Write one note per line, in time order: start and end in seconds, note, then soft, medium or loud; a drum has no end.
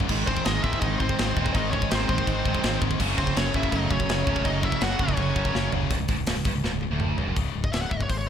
0.00 0.09 C#2 medium
0.00 0.09 G#2 medium
0.00 2.95 G#3 medium
0.00 2.95 G#4 medium
0.00 kick medium
0.09 0.23 G#1 loud
0.09 0.17 G#2 medium
0.09 2.97 D#3 medium
0.09 0.17 D#3 medium
0.09 0.27 G#3 loud
0.09 0.63 G#3 loud
0.09 2.97 C4 medium
0.09 2.97 C5 medium
0.09 kick medium
0.09 china medium
0.09 crash loud
0.17 0.25 G#2 medium
0.17 0.25 D#3 medium
0.25 0.41 G#1 medium
0.25 0.31 G#2 medium
0.25 0.32 D#3 medium
0.25 0.47 C4 medium
0.25 0.45 C5 medium
0.25 kick medium
0.32 0.39 G#2 medium
0.32 0.40 D#3 medium
0.37 0.48 G#2 medium
0.37 0.48 D#3 medium
0.37 kick medium
0.45 0.60 G#1 medium
0.45 0.54 G#2 medium
0.45 0.63 D#4 medium
0.45 0.63 D#5 loud
0.45 snare loud
0.45 china medium
0.49 0.56 D#3 medium
0.55 0.62 G#2 medium
0.55 0.62 D#3 medium
0.62 0.78 G#1 medium
0.62 0.69 G#2 medium
0.62 0.70 D#3 medium
0.62 1.17 G#3 loud
0.62 0.82 G#3 loud
0.62 0.82 E4 medium
0.62 0.80 E5 loud
0.62 kick medium
0.70 0.77 G#2 medium
0.70 0.77 D#3 medium
0.70 kick medium
0.78 0.85 G#2 medium
0.78 0.85 D#3 medium
0.78 0.99 D#5 loud
0.78 china medium
0.82 0.96 G#1 loud
0.82 0.91 G#2 medium
0.82 0.99 D#4 medium
0.82 kick loud
0.86 0.93 D#3 medium
0.92 0.99 G#2 medium
0.92 1.01 D#3 medium
0.99 1.14 G#1 medium
0.99 1.07 G#2 medium
0.99 1.08 D#3 medium
0.99 1.51 C4 medium
0.99 1.53 C5 medium
0.99 kick medium
1.08 1.15 G#2 medium
1.08 1.16 D#3 medium
1.08 kick medium
1.16 1.33 G#1 medium
1.16 1.21 G#2 medium
1.16 1.24 D#3 medium
1.16 snare loud
1.16 china medium
1.20 1.29 G#2 medium
1.20 1.54 G#3 loud
1.26 1.32 D#3 medium
1.31 1.38 G#2 medium
1.31 1.40 D#3 medium
1.37 1.50 D#1 loud
1.37 1.45 G#2 medium
1.37 1.46 D#3 medium
1.37 1.55 G#3 loud
1.37 kick medium
1.46 1.53 G#2 medium
1.46 1.54 D#3 medium
1.46 kick medium
1.53 1.82 G#1 loud
1.53 1.62 G#2 medium
1.53 1.63 D#3 loud
1.53 2.09 G#3 loud
1.53 1.71 D#4 medium
1.53 1.70 D#5 loud
1.53 kick medium
1.53 china medium
1.63 1.70 G#2 medium
1.63 1.71 D#3 medium
1.70 1.77 G#2 medium
1.70 1.78 D#3 medium
1.70 1.89 C#4 medium
1.70 1.90 C#5 medium
1.70 kick medium
1.77 1.85 G#2 medium
1.77 1.86 D#3 medium
1.82 1.93 G#2 medium
1.82 kick medium
1.86 1.94 D#3 medium
1.91 2.05 G#1 loud
1.91 2.00 G#2 medium
1.91 2.01 D#3 medium
1.91 2.09 G#3 loud
1.91 2.08 C4 medium
1.91 2.08 C5 loud
1.91 snare loud
1.91 china medium
2.01 2.07 G#2 medium
2.01 2.08 D#3 medium
2.07 2.23 G#1 medium
2.07 2.15 G#2 medium
2.07 2.16 D#3 medium
2.07 2.63 G#3 medium
2.07 2.78 C4 medium
2.07 2.78 C5 medium
2.07 kick medium
2.16 2.23 G#2 medium
2.16 2.23 D#3 medium
2.16 kick medium
2.23 2.41 G#1 loud
2.23 2.31 G#2 medium
2.23 2.31 D#3 medium
2.23 kick medium
2.27 2.39 G#2 medium
2.27 2.39 D#3 medium
2.27 china medium
2.39 2.46 G#2 medium
2.39 2.47 D#3 medium
2.45 2.59 G#1 medium
2.45 2.53 G#2 medium
2.45 2.54 D#3 medium
2.45 2.63 G#3 loud
2.45 kick medium
2.53 2.61 G#2 medium
2.53 2.62 D#3 medium
2.53 kick medium
2.62 2.78 G#1 medium
2.62 2.69 G#2 medium
2.62 2.69 D#3 medium
2.62 3.00 G#3 medium
2.62 snare loud
2.62 china medium
2.69 2.77 G#2 medium
2.69 2.77 D#3 medium
2.77 2.85 G#2 medium
2.77 2.84 D#3 medium
2.82 2.96 G#1 loud
2.82 2.92 D#3 medium
2.82 kick medium
2.86 2.92 G#2 medium
2.91 3.00 G#2 medium
2.91 3.00 D#3 medium
2.91 kick medium
3.00 3.14 F#1 loud
3.00 3.07 F#2 medium
3.00 3.08 C#3 medium
3.00 5.88 F#3 medium
3.00 3.54 F#3 loud
3.00 3.18 F#3 loud
3.00 5.88 A3 medium
3.00 5.88 C#4 medium
3.00 5.88 A4 medium
3.00 5.88 C#5 medium
3.00 kick loud
3.00 crash loud
3.00 china medium
3.08 3.15 F#2 medium
3.08 3.15 C#3 medium
3.15 3.32 F#1 medium
3.15 3.23 F#2 medium
3.15 3.23 C#3 medium
3.15 3.35 C4 medium
3.15 3.35 C5 medium
3.15 kick medium
3.24 3.29 F#2 medium
3.24 3.30 C#3 medium
3.24 kick medium
3.30 3.37 F#2 medium
3.30 3.38 C#3 medium
3.36 3.50 F#1 loud
3.36 3.45 F#2 medium
3.36 3.45 C#3 medium
3.36 3.53 C#4 medium
3.36 3.54 C#5 medium
3.36 snare loud
3.36 china medium
3.45 3.53 F#2 medium
3.45 3.53 C#3 medium
3.53 3.68 F#1 medium
3.53 3.61 F#2 medium
3.53 3.61 C#3 medium
3.53 4.08 F#3 medium
3.53 3.72 F#3 loud
3.53 3.71 E4 medium
3.53 3.73 E5 medium
3.53 kick loud
3.61 3.67 F#2 medium
3.61 3.69 C#3 medium
3.61 kick medium
3.68 3.75 F#2 medium
3.68 3.76 C#3 medium
3.72 3.86 F#1 loud
3.72 3.82 F#2 medium
3.72 3.89 D#4 medium
3.72 3.90 D#5 loud
3.72 kick loud
3.72 china medium
3.77 3.83 C#3 medium
3.82 3.89 F#2 medium
3.82 3.90 C#3 medium
3.90 4.05 F#1 medium
3.90 3.97 F#2 medium
3.90 3.98 C#3 medium
3.90 4.41 C#4 medium
3.90 4.45 C#5 medium
3.90 kick medium
3.98 4.05 F#2 medium
3.98 4.06 C#3 medium
3.98 kick medium
4.05 4.22 F#1 medium
4.05 4.13 F#2 medium
4.05 4.13 C#3 medium
4.05 china medium
4.10 4.20 F#2 medium
4.10 4.21 C#3 medium
4.10 4.45 F#3 medium
4.10 snare loud
4.21 4.27 F#2 medium
4.21 4.28 C#3 medium
4.27 4.41 C#1 loud
4.27 4.35 F#2 medium
4.27 4.36 C#3 medium
4.27 4.45 F#3 loud
4.27 kick medium
4.36 4.44 F#2 medium
4.36 4.45 C#3 medium
4.36 kick medium
4.45 4.73 F#1 loud
4.45 4.51 F#2 medium
4.45 4.53 C#3 medium
4.45 4.98 F#3 loud
4.45 4.64 D#4 medium
4.45 4.64 D#5 loud
4.45 kick medium
4.45 china medium
4.51 4.59 F#2 medium
4.51 4.61 C#3 medium
4.60 4.67 F#2 medium
4.60 4.69 C#3 medium
4.60 4.82 E5 medium
4.60 kick medium
4.64 4.75 F#2 medium
4.64 4.82 E4 medium
4.69 4.75 C#3 medium
4.69 kick medium
4.75 4.83 F#2 medium
4.75 4.83 C#3 medium
4.81 4.96 F#1 loud
4.81 4.90 F#2 medium
4.81 4.91 C#3 medium
4.81 4.99 F#3 loud
4.81 4.99 F#4 medium
4.81 5.01 F#5 loud
4.81 snare loud
4.81 china medium
4.90 4.98 F#2 medium
4.90 4.99 C#3 medium
4.99 5.13 F#1 medium
4.99 5.06 F#2 medium
4.99 5.06 C#3 medium
4.99 5.53 F#3 medium
4.99 5.69 C#4 medium
4.99 5.69 C#5 medium
4.99 kick loud
5.06 5.13 F#2 medium
5.06 5.14 C#3 medium
5.06 kick medium
5.13 5.21 F#2 medium
5.13 5.21 C#3 medium
5.13 china medium
5.17 5.32 F#1 medium
5.17 kick medium
5.22 5.29 F#2 medium
5.22 5.29 C#3 medium
5.29 5.36 F#2 medium
5.29 5.37 C#3 medium
5.36 5.50 F#1 medium
5.36 5.44 F#2 medium
5.36 5.45 C#3 medium
5.36 5.54 F#3 loud
5.36 kick medium
5.45 5.53 F#2 medium
5.45 5.52 C#3 medium
5.45 kick medium
5.52 5.68 F#1 medium
5.52 5.60 F#2 medium
5.52 5.60 C#3 medium
5.52 5.90 F#3 medium
5.52 snare medium
5.61 5.66 F#2 medium
5.61 5.67 C#3 medium
5.66 5.74 F#2 medium
5.66 5.75 C#3 medium
5.72 5.87 F#1 medium
5.72 5.82 F#2 medium
5.72 5.83 C#3 medium
5.72 floor tom medium
5.83 5.90 F#2 medium
5.83 5.91 C#3 medium
5.90 5.99 C#1 medium
5.90 5.99 C#2 loud
5.90 kick loud
5.90 open hi-hat medium
6.00 6.08 C#1 medium
6.00 6.09 C#2 medium
6.08 6.17 G#1 medium
6.08 6.18 G#2 loud
6.08 kick loud
6.08 open hi-hat medium
6.18 6.27 C#1 medium
6.18 6.27 C#2 medium
6.27 6.36 C#1 loud
6.27 6.35 C#2 loud
6.27 snare loud
6.27 open hi-hat medium
6.36 6.45 C#1 medium
6.36 6.45 C#2 medium
6.45 6.54 G1 medium
6.45 6.54 G2 medium
6.45 kick loud
6.45 open hi-hat medium
6.55 6.64 C#1 medium
6.55 6.63 C#2 medium
6.64 6.72 C#1 loud
6.64 6.72 C#2 loud
6.64 snare medium
6.73 6.81 C#1 medium
6.73 6.81 C#2 medium
6.81 6.90 C#1 medium
6.81 6.91 C#2 medium
6.81 high tom medium
6.91 7.16 D1 loud
6.91 7.18 D2 loud
7.00 mid tom medium
7.18 7.27 C#1 loud
7.18 7.26 C#2 medium
7.18 floor tom medium
7.27 7.36 F#1 medium
7.27 7.35 F#2 loud
7.36 7.49 C#1 medium
7.36 7.53 C#2 medium
7.36 7.53 G#2 medium
7.36 7.54 C#3 medium
7.36 kick loud
7.36 open hi-hat medium
7.54 7.68 C#1 medium
7.54 7.71 C#2 medium
7.54 7.71 G#2 medium
7.64 7.72 D#5 medium
7.64 kick medium
7.72 7.86 C#1 medium
7.72 7.90 C#2 medium
7.72 7.90 G#2 medium
7.72 7.91 C#3 medium
7.72 7.82 E5 medium
7.72 snare loud
7.72 open hi-hat medium
7.81 7.91 F#5 loud
7.90 8.04 C#1 medium
7.90 8.07 C#2 medium
7.90 8.08 G#2 medium
7.90 7.97 E5 medium
7.90 kick medium
7.97 8.03 D#5 medium
7.97 kick medium
8.03 8.09 C#5 medium
8.09 8.29 G#1 medium
8.09 8.25 C#2 medium
8.09 8.26 G#2 medium
8.09 8.18 C5 medium
8.09 kick medium
8.09 open hi-hat medium
8.18 8.27 C#5 loud